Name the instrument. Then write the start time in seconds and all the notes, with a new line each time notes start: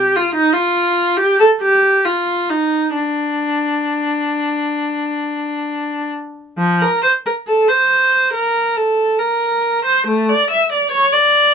viola
Already playing: G4
0.16 F4
0.35 D#4
0.53 F4
1.17 G4
1.40 A4
1.61 G4
2.05 F4
2.49 D#4
2.95 D4
6.58 F3
6.82 A#4
7.03 C5
7.26 A#4
7.47 A4
7.68 C5
8.33 A#4
8.76 A4
9.19 A#4
9.85 C5
10.07 A3
10.29 D5
10.50 E5
10.72 D5
10.91 C#5
11.13 D5